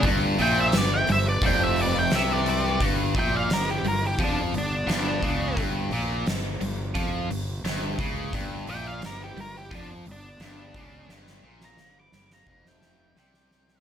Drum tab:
HH |o-o-o-o-o-o-o-o-|o-o-o-o-o-o-o-o-|o-o-o-o-o-o-o-o-|o-o-o-o-o-o-o-o-|
SD |----o-------o---|----o-------o---|----o-------o---|----o-------o---|
BD |o-------o-------|o-o-----o-----o-|o-------o-----o-|o-------o-----o-|

HH |----------------|
SD |oo-oo-oo-oo-oooo|
BD |--------o-------|